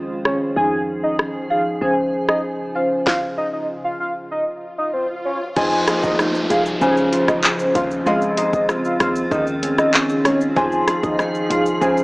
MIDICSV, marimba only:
0, 0, Header, 1, 2, 480
1, 0, Start_track
1, 0, Key_signature, -4, "minor"
1, 0, Tempo, 625000
1, 434, Time_signature, 4, 2, 24, 8
1, 9245, End_track
2, 0, Start_track
2, 0, Title_t, "Marimba"
2, 0, Program_c, 0, 12
2, 0, Note_on_c, 0, 51, 88
2, 0, Note_on_c, 0, 61, 79
2, 0, Note_on_c, 0, 68, 93
2, 135, Note_off_c, 0, 51, 0
2, 136, Note_off_c, 0, 61, 0
2, 137, Note_off_c, 0, 68, 0
2, 191, Note_on_c, 0, 51, 70
2, 195, Note_on_c, 0, 61, 63
2, 196, Note_on_c, 0, 68, 74
2, 315, Note_off_c, 0, 51, 0
2, 317, Note_off_c, 0, 61, 0
2, 318, Note_off_c, 0, 68, 0
2, 431, Note_on_c, 0, 53, 87
2, 434, Note_on_c, 0, 63, 80
2, 437, Note_on_c, 0, 68, 94
2, 874, Note_off_c, 0, 53, 0
2, 876, Note_off_c, 0, 63, 0
2, 877, Note_off_c, 0, 68, 0
2, 1153, Note_on_c, 0, 53, 75
2, 1156, Note_on_c, 0, 63, 65
2, 1158, Note_on_c, 0, 68, 80
2, 1276, Note_off_c, 0, 53, 0
2, 1278, Note_off_c, 0, 63, 0
2, 1279, Note_off_c, 0, 68, 0
2, 1393, Note_on_c, 0, 53, 85
2, 1395, Note_on_c, 0, 61, 80
2, 1398, Note_on_c, 0, 72, 91
2, 2056, Note_off_c, 0, 53, 0
2, 2057, Note_off_c, 0, 61, 0
2, 2059, Note_off_c, 0, 72, 0
2, 2112, Note_on_c, 0, 53, 68
2, 2115, Note_on_c, 0, 61, 63
2, 2118, Note_on_c, 0, 72, 78
2, 2236, Note_off_c, 0, 53, 0
2, 2238, Note_off_c, 0, 61, 0
2, 2239, Note_off_c, 0, 72, 0
2, 4272, Note_on_c, 0, 53, 99
2, 4274, Note_on_c, 0, 63, 88
2, 4276, Note_on_c, 0, 68, 105
2, 4604, Note_off_c, 0, 53, 0
2, 4605, Note_off_c, 0, 63, 0
2, 4606, Note_off_c, 0, 68, 0
2, 4632, Note_on_c, 0, 53, 79
2, 4634, Note_on_c, 0, 63, 72
2, 4637, Note_on_c, 0, 68, 83
2, 4756, Note_off_c, 0, 53, 0
2, 4757, Note_off_c, 0, 63, 0
2, 4758, Note_off_c, 0, 68, 0
2, 4991, Note_on_c, 0, 53, 79
2, 4993, Note_on_c, 0, 63, 72
2, 4995, Note_on_c, 0, 68, 87
2, 5115, Note_off_c, 0, 53, 0
2, 5116, Note_off_c, 0, 63, 0
2, 5118, Note_off_c, 0, 68, 0
2, 5231, Note_on_c, 0, 53, 93
2, 5233, Note_on_c, 0, 61, 88
2, 5236, Note_on_c, 0, 72, 102
2, 5453, Note_off_c, 0, 53, 0
2, 5454, Note_off_c, 0, 61, 0
2, 5456, Note_off_c, 0, 72, 0
2, 5472, Note_on_c, 0, 53, 75
2, 5474, Note_on_c, 0, 61, 69
2, 5476, Note_on_c, 0, 72, 87
2, 5596, Note_off_c, 0, 53, 0
2, 5597, Note_off_c, 0, 61, 0
2, 5598, Note_off_c, 0, 72, 0
2, 5831, Note_on_c, 0, 53, 78
2, 5834, Note_on_c, 0, 61, 74
2, 5837, Note_on_c, 0, 72, 84
2, 5955, Note_off_c, 0, 53, 0
2, 5957, Note_off_c, 0, 61, 0
2, 5958, Note_off_c, 0, 72, 0
2, 6191, Note_on_c, 0, 53, 98
2, 6192, Note_on_c, 0, 60, 90
2, 6195, Note_on_c, 0, 68, 101
2, 6524, Note_off_c, 0, 53, 0
2, 6525, Note_off_c, 0, 60, 0
2, 6526, Note_off_c, 0, 68, 0
2, 6552, Note_on_c, 0, 53, 77
2, 6554, Note_on_c, 0, 60, 73
2, 6557, Note_on_c, 0, 68, 83
2, 6676, Note_off_c, 0, 53, 0
2, 6677, Note_off_c, 0, 60, 0
2, 6679, Note_off_c, 0, 68, 0
2, 6911, Note_on_c, 0, 53, 78
2, 6914, Note_on_c, 0, 60, 72
2, 6917, Note_on_c, 0, 68, 87
2, 7036, Note_off_c, 0, 53, 0
2, 7037, Note_off_c, 0, 60, 0
2, 7038, Note_off_c, 0, 68, 0
2, 7152, Note_on_c, 0, 51, 93
2, 7155, Note_on_c, 0, 61, 85
2, 7156, Note_on_c, 0, 68, 102
2, 7374, Note_off_c, 0, 51, 0
2, 7375, Note_off_c, 0, 61, 0
2, 7376, Note_off_c, 0, 68, 0
2, 7392, Note_on_c, 0, 51, 79
2, 7394, Note_on_c, 0, 61, 73
2, 7396, Note_on_c, 0, 68, 86
2, 7516, Note_off_c, 0, 51, 0
2, 7517, Note_off_c, 0, 61, 0
2, 7518, Note_off_c, 0, 68, 0
2, 7752, Note_on_c, 0, 51, 83
2, 7754, Note_on_c, 0, 61, 74
2, 7757, Note_on_c, 0, 68, 87
2, 7876, Note_off_c, 0, 51, 0
2, 7877, Note_off_c, 0, 61, 0
2, 7878, Note_off_c, 0, 68, 0
2, 8110, Note_on_c, 0, 53, 100
2, 8112, Note_on_c, 0, 63, 89
2, 8114, Note_on_c, 0, 68, 109
2, 8443, Note_off_c, 0, 53, 0
2, 8444, Note_off_c, 0, 63, 0
2, 8445, Note_off_c, 0, 68, 0
2, 8471, Note_on_c, 0, 53, 76
2, 8474, Note_on_c, 0, 63, 70
2, 8476, Note_on_c, 0, 68, 85
2, 8596, Note_off_c, 0, 53, 0
2, 8597, Note_off_c, 0, 63, 0
2, 8598, Note_off_c, 0, 68, 0
2, 8831, Note_on_c, 0, 53, 81
2, 8834, Note_on_c, 0, 63, 73
2, 8837, Note_on_c, 0, 68, 86
2, 8955, Note_off_c, 0, 53, 0
2, 8957, Note_off_c, 0, 63, 0
2, 8958, Note_off_c, 0, 68, 0
2, 9070, Note_on_c, 0, 53, 92
2, 9072, Note_on_c, 0, 61, 87
2, 9075, Note_on_c, 0, 72, 102
2, 9245, Note_off_c, 0, 53, 0
2, 9245, Note_off_c, 0, 61, 0
2, 9245, Note_off_c, 0, 72, 0
2, 9245, End_track
0, 0, End_of_file